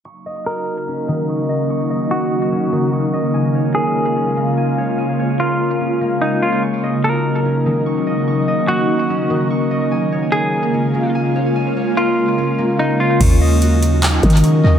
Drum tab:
CC |------------------------|------------------------|------------------------|------------------------|
HH |------------------------|------------------------|------------------------|------------------------|
CP |------------------------|------------------------|------------------------|------------------------|
BD |------------------------|------------------------|------------------------|------------------------|

CC |------------------------|------------------------|------------------------|------------------------|
HH |------------------------|------------------------|------------------------|------------------------|
CP |------------------------|------------------------|------------------------|------------------------|
BD |------------------------|------------------------|------------------------|------------------------|

CC |x-----------------------|
HH |x-----x--x--x--xxxx-----|
CP |------------x-----------|
BD |o--------------o--------|